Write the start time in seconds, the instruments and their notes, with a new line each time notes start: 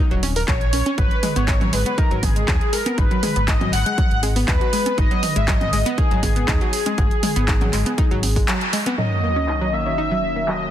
0.11 analog synth bass D#1, synth pluck F#3, closed hi-hat
0.23 synth pluck C#4, open hi-hat, high conga
0.36 synth pluck A#4, open hi-hat
0.48 analog synth bass A#1, synth pluck F#4, analog synth lead C#5, kick, clap, closed hi-hat
0.61 closed hi-hat
0.73 synth pluck C#4, open hi-hat
0.86 synth pluck C#4, closed hi-hat, high conga
0.98 analog synth bass G#1, synth pluck F#3, analog synth lead B4, kick, closed hi-hat
1.11 closed hi-hat
1.23 synth pluck G#3, open hi-hat, mid tom
1.36 analog synth bass G#1, synth pluck B3, analog synth lead C#5, closed hi-hat
1.48 synth pluck D#4, kick, clap, closed hi-hat
1.61 synth pluck F#3, closed hi-hat, mid tom, high conga
1.73 analog synth bass G#1, synth pluck G#3, analog synth lead B4, open hi-hat
1.86 synth pluck B3, closed hi-hat
1.98 synth pluck D#4, analog synth lead A#4, kick, closed hi-hat
2.11 analog synth bass G#1, synth pluck F#3, closed hi-hat
2.23 analog synth lead G#4, kick, open hi-hat, mid tom, high conga
2.36 synth pluck G#3, closed hi-hat
2.48 analog synth bass D#2, synth pluck F#3, kick, clap, closed hi-hat
2.61 closed hi-hat
2.73 synth pluck G#3, analog synth lead A#4, open hi-hat
2.86 synth pluck B3, closed hi-hat, high conga
2.98 analog synth bass G#1, synth pluck D#4, analog synth lead B4, kick, closed hi-hat
3.11 synth pluck F#3, closed hi-hat
3.23 synth pluck G#3, open hi-hat, mid tom
3.36 analog synth bass G#1, synth pluck B3, closed hi-hat
3.48 synth pluck D#4, analog synth lead D#5, kick, clap, closed hi-hat
3.61 synth pluck F#3, closed hi-hat, mid tom, high conga
3.73 analog synth bass G#1, analog synth lead F#5, clap, open hi-hat
3.86 synth pluck G#3, closed hi-hat
3.98 synth pluck F#3, kick, closed hi-hat
4.11 analog synth bass G#1, closed hi-hat
4.23 synth pluck G#3, open hi-hat, high conga
4.36 synth pluck B3, open hi-hat
4.48 analog synth bass D#2, synth pluck D#4, analog synth lead B4, kick, clap, closed hi-hat
4.61 synth pluck F#3, closed hi-hat
4.73 synth pluck G#3, open hi-hat
4.86 synth pluck B3, closed hi-hat, high conga
4.98 analog synth bass G#1, synth pluck D#4, analog synth lead D#5, kick, closed hi-hat
5.11 synth pluck F#3, closed hi-hat
5.23 open hi-hat, mid tom
5.36 analog synth bass G#1, synth pluck G#3, analog synth lead E5, closed hi-hat
5.48 synth pluck F#3, analog synth lead D#5, kick, clap, closed hi-hat
5.61 closed hi-hat, mid tom, high conga
5.73 analog synth bass G#1, synth pluck G#3, open hi-hat
5.86 synth pluck B3, closed hi-hat
5.98 synth pluck D#4, analog synth lead G#4, kick, closed hi-hat
6.11 analog synth bass G#1, synth pluck F#3, closed hi-hat
6.23 synth pluck G#3, kick, open hi-hat, mid tom, high conga
6.36 synth pluck B3, closed hi-hat
6.48 analog synth bass D#2, synth pluck D#4, kick, clap, closed hi-hat
6.61 synth pluck F#3, closed hi-hat
6.73 open hi-hat
6.86 synth pluck G#3, closed hi-hat, high conga
6.98 analog synth bass G#1, synth pluck F#3, kick, closed hi-hat
7.11 closed hi-hat
7.23 synth pluck G#3, open hi-hat, mid tom
7.36 analog synth bass G#1, synth pluck B3, closed hi-hat
7.48 synth pluck D#4, kick, clap, closed hi-hat
7.61 synth pluck F#3, closed hi-hat, mid tom, high conga
7.73 analog synth bass G#1, synth pluck G#3, clap, open hi-hat
7.86 synth pluck B3, closed hi-hat
7.98 synth pluck D#4, kick, closed hi-hat
8.11 analog synth bass G#1, synth pluck F#3, closed hi-hat
8.23 open hi-hat, high conga
8.36 synth pluck G#3, kick, open hi-hat
8.48 synth pluck F#3, clap, closed hi-hat
8.61 closed hi-hat
8.73 synth pluck G#3, open hi-hat
8.86 synth pluck B3, closed hi-hat, high conga
8.98 grand piano D#3 F#3 C#4 A#4 C#5, analog synth pad D#3 A#3 C#4 F#4, synth pluck F#3, analog synth lead D#5, sub drop
9.23 synth pluck A#3
9.36 synth pluck C#4
9.48 synth pluck D#4, clap
9.61 synth pluck F#3
9.73 synth pluck A#3, analog synth lead E5
9.86 synth pluck C#4
9.98 synth pluck D#4
10.11 synth pluck F#3
10.36 synth pluck A#3
10.48 synth pluck F#3, analog synth lead D#5, clap